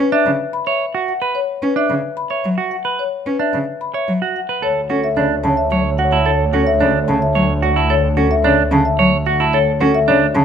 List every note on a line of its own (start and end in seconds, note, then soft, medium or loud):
0.00 0.17 B4 medium
0.12 0.30 D4 medium
0.12 0.30 E5 medium
0.26 0.36 C#3 medium
0.53 0.71 B5 medium
0.66 0.85 C#5 medium
0.66 0.85 E5 medium
0.95 1.12 F#4 medium
1.08 1.26 F#5 medium
1.22 1.39 B4 medium
1.22 1.39 B5 medium
1.35 1.53 C#5 medium
1.62 1.73 C#4 medium
1.62 1.80 B4 medium
1.76 1.94 D4 medium
1.76 1.94 E5 medium
1.90 2.00 C#3 soft
2.17 2.35 B5 medium
2.30 2.48 C#5 soft
2.30 2.48 E5 medium
2.44 2.55 F#3 medium
2.58 2.76 F#4 medium
2.71 2.89 F#5 medium
2.85 3.03 B4 medium
2.85 3.03 B5 soft
2.99 3.17 C#5 medium
3.26 3.36 C#4 soft
3.26 3.44 B4 soft
3.39 3.57 D4 medium
3.39 3.57 E5 medium
3.54 3.64 C#3 soft
3.81 3.99 B5 medium
3.94 4.12 C#5 soft
3.94 4.12 E5 medium
4.08 4.18 F#3 medium
4.22 4.39 F#4 medium
4.36 4.53 F#5 medium
4.49 4.67 B4 medium
4.49 4.67 B5 soft
4.62 10.45 D2 medium
4.62 4.80 A4 medium
4.62 4.80 C#5 medium
4.62 4.83 C#5 soft
4.90 5.00 C#4 medium
4.90 5.08 F#4 medium
4.90 5.08 A4 medium
4.90 5.12 C#5 soft
5.04 5.21 E5 medium
5.17 5.27 C#3 medium
5.17 5.35 D4 medium
5.17 5.35 C#5 medium
5.17 5.40 C#5 medium
5.44 5.54 C#3 medium
5.44 5.62 A5 medium
5.49 5.68 C#5 medium
5.57 5.75 E5 medium
5.71 5.81 F#3 medium
5.71 5.89 C#5 medium
5.77 5.97 C#5 medium
5.98 6.17 F#4 medium
5.98 6.16 F#5 medium
6.05 6.25 C#5 medium
6.11 6.30 E4 medium
6.11 6.30 A5 medium
6.26 6.44 A4 medium
6.26 6.44 C#5 medium
6.34 6.54 C#5 medium
6.53 6.64 C#4 medium
6.53 6.71 F#4 medium
6.53 6.71 A4 medium
6.62 6.82 C#5 medium
6.67 6.85 E5 medium
6.80 6.91 C#3 medium
6.80 6.98 D4 medium
6.80 6.98 C#5 medium
6.91 7.11 C#5 medium
7.08 7.18 C#3 medium
7.08 7.26 A5 medium
7.19 7.39 C#5 soft
7.19 7.40 E5 medium
7.35 7.46 F#3 medium
7.35 7.53 C#5 medium
7.48 7.68 C#5 soft
7.62 7.80 F#4 medium
7.62 7.80 F#5 medium
7.76 7.94 E4 medium
7.76 7.94 A5 medium
7.90 8.08 A4 medium
7.90 8.08 C#5 medium
8.17 8.27 C#4 medium
8.17 8.35 F#4 medium
8.17 8.35 A4 medium
8.31 8.49 E5 medium
8.44 8.55 C#3 medium
8.44 8.62 D4 medium
8.44 8.62 C#5 medium
8.72 8.82 C#3 medium
8.72 8.90 A5 medium
8.85 9.03 E5 medium
8.99 9.09 F#3 medium
8.99 9.17 C#5 medium
9.26 9.44 F#4 medium
9.26 9.44 F#5 medium
9.40 9.58 E4 medium
9.40 9.58 A5 medium
9.53 9.71 A4 medium
9.53 9.71 C#5 medium
9.81 9.91 C#4 medium
9.81 9.99 F#4 medium
9.81 9.99 A4 medium
9.95 10.12 E5 medium
10.08 10.18 C#3 medium
10.08 10.26 D4 medium
10.08 10.26 C#5 medium
10.35 10.45 C#3 medium
10.35 10.45 A5 medium